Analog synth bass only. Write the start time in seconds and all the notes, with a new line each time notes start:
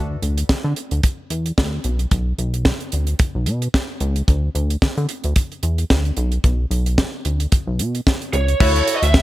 Already playing: D2
0.22 D2
0.49 D3
0.64 D3
0.91 D2
1.30 E2
1.58 D2
1.84 B1
2.12 B1
2.38 B1
2.93 D2
3.35 B1
3.47 B2
4.01 C#2
4.28 D2
4.55 D2
4.82 D3
4.97 D3
5.24 D2
5.63 E2
5.90 D2
6.17 B1
6.44 B1
6.70 B1
7.25 D2
7.67 B1
7.79 B2
8.33 C#2
8.60 D2
9.02 D2